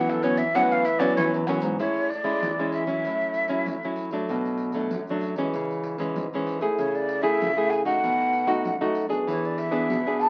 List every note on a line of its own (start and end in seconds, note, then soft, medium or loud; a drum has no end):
0.00 0.46 E3 medium
0.00 0.52 E3 medium
0.00 0.19 F#3 medium
0.00 0.20 B3 medium
0.00 0.20 C#4 medium
0.00 0.12 F#5 medium
0.09 0.25 A4 medium
0.09 pandeiro soft
0.09 tamborim medium
0.09 maracas soft
0.09 surdo soft
0.23 0.42 F#3 medium
0.23 0.43 B3 medium
0.23 0.43 C#4 medium
0.23 0.39 C#5 medium
0.23 pandeiro medium
0.23 maracas medium
0.37 0.57 E5 medium
0.37 pandeiro medium
0.37 maracas medium
0.37 surdo soft
0.55 1.14 A2 medium
0.55 1.08 E3 loud
0.55 0.84 F#3 medium
0.55 0.85 B3 medium
0.55 0.85 C#4 medium
0.55 0.73 F#5 loud
0.55 pandeiro medium
0.55 tamborim medium
0.55 maracas medium
0.55 surdo medium
0.71 0.87 F5 medium
0.71 pandeiro soft
0.71 maracas soft
0.85 1.00 E5 medium
0.85 pandeiro medium
0.85 maracas medium
0.99 1.42 F#3 medium
0.99 1.43 B3 medium
0.99 1.43 C#4 medium
0.99 1.15 D5 medium
0.99 pandeiro medium
0.99 tamborim medium
0.99 maracas medium
0.99 surdo soft
1.16 1.30 E3 loud
1.16 1.77 E3 medium
1.16 1.35 C#5 medium
1.16 pandeiro medium
1.16 maracas medium
1.16 surdo loud
1.34 1.47 E2 medium
1.34 pandeiro soft
1.34 maracas soft
1.47 1.61 F#2 medium
1.47 1.77 F#3 medium
1.47 1.77 B3 medium
1.47 1.77 C#4 medium
1.47 pandeiro medium
1.47 tamborim medium
1.47 maracas medium
1.61 1.77 G#2 medium
1.61 pandeiro medium
1.61 maracas medium
1.79 2.39 A2 medium
1.79 2.09 G#3 medium
1.79 2.09 C#4 medium
1.79 2.09 E4 medium
1.79 2.11 C#5 medium
1.79 pandeiro medium
1.79 surdo medium
1.96 pandeiro soft
2.09 2.72 D5 medium
2.09 pandeiro medium
2.24 2.51 G#3 medium
2.24 2.52 C#4 medium
2.24 2.52 E4 medium
2.24 pandeiro medium
2.42 3.01 E3 medium
2.42 pandeiro medium
2.42 surdo loud
2.59 2.85 G#3 medium
2.59 2.85 C#4 medium
2.59 2.85 E4 medium
2.59 pandeiro soft
2.72 3.93 E5 medium
2.72 pandeiro medium
2.87 3.45 F#3 medium
2.87 3.45 C#4 medium
2.87 3.46 E4 medium
2.87 pandeiro soft
3.05 3.65 A2 medium
3.05 pandeiro medium
3.05 surdo soft
3.20 pandeiro soft
3.34 pandeiro medium
3.48 3.76 F#3 medium
3.48 3.76 C#4 medium
3.48 3.77 E4 medium
3.48 pandeiro medium
3.66 4.26 A2 medium
3.66 pandeiro medium
3.66 surdo medium
3.83 4.10 F#3 medium
3.83 4.10 C#4 medium
3.83 4.10 E4 medium
3.83 pandeiro soft
3.96 pandeiro medium
4.11 4.71 F#3 soft
4.11 4.70 A3 medium
4.11 4.71 D4 medium
4.11 pandeiro soft
4.29 4.89 B2 medium
4.29 pandeiro medium
4.29 surdo soft
4.45 pandeiro soft
4.58 pandeiro medium
4.72 5.01 F#3 soft
4.72 5.02 A3 medium
4.72 5.02 D4 medium
4.72 pandeiro soft
4.91 5.51 F#2 medium
4.91 pandeiro medium
4.91 surdo medium
5.07 5.35 F#3 medium
5.07 5.35 A3 medium
5.07 5.35 D4 medium
5.07 pandeiro soft
5.21 pandeiro medium
5.36 5.95 E3 medium
5.36 5.96 G#3 soft
5.36 5.96 C#4 medium
5.36 pandeiro medium
5.53 6.14 C#3 medium
5.53 pandeiro medium
5.53 surdo soft
5.70 pandeiro soft
5.83 pandeiro medium
5.98 6.26 E3 medium
5.98 6.26 G#3 medium
5.98 6.26 C#4 medium
5.98 pandeiro medium
6.16 6.76 G#2 medium
6.16 pandeiro medium
6.16 surdo medium
6.33 6.59 E3 medium
6.33 6.60 G#3 medium
6.33 6.60 C#4 medium
6.33 pandeiro soft
6.46 pandeiro medium
6.61 7.20 A3 medium
6.61 7.20 E4 medium
6.61 7.20 G#4 medium
6.61 pandeiro soft
6.78 7.38 C#3 medium
6.78 6.97 C#5 medium
6.78 pandeiro medium
6.78 surdo medium
6.95 7.23 D5 medium
6.95 pandeiro soft
7.09 pandeiro medium
7.22 7.50 A3 medium
7.22 7.51 E4 medium
7.22 7.51 G#4 medium
7.22 7.72 E5 medium
7.22 pandeiro medium
7.41 8.00 C#3 medium
7.41 pandeiro medium
7.41 surdo loud
7.57 7.83 A3 medium
7.57 7.83 E4 medium
7.57 7.83 G#4 medium
7.57 pandeiro soft
7.70 7.85 G#5 medium
7.70 pandeiro medium
7.85 8.44 A3 medium
7.85 8.44 D#4 medium
7.85 8.44 F#4 medium
7.85 8.92 F#5 medium
7.85 pandeiro medium
8.04 8.63 B2 medium
8.04 pandeiro medium
8.04 surdo soft
8.20 pandeiro soft
8.33 pandeiro medium
8.47 8.75 A3 medium
8.47 8.75 D#4 medium
8.47 8.75 F#4 medium
8.47 pandeiro medium
8.65 9.25 F#2 medium
8.65 pandeiro medium
8.65 surdo medium
8.81 9.07 A3 medium
8.81 9.07 D#4 medium
8.81 9.08 F#4 medium
8.81 pandeiro soft
8.95 pandeiro medium
9.09 9.68 B3 medium
9.09 9.68 D4 medium
9.09 9.69 G#4 medium
9.09 pandeiro medium
9.28 9.87 E3 medium
9.28 9.47 C#5 medium
9.28 pandeiro medium
9.28 surdo medium
9.44 9.60 D5 medium
9.44 pandeiro soft
9.58 10.22 E5 medium
9.58 pandeiro medium
9.71 9.99 B3 medium
9.71 9.99 D4 medium
9.71 10.00 G#4 medium
9.71 pandeiro medium
9.90 10.29 B2 medium
9.90 pandeiro medium
9.90 surdo loud
10.06 10.29 B3 medium
10.06 10.29 D4 medium
10.06 10.29 G#4 medium
10.06 pandeiro soft
10.20 10.29 A5 loud
10.20 pandeiro medium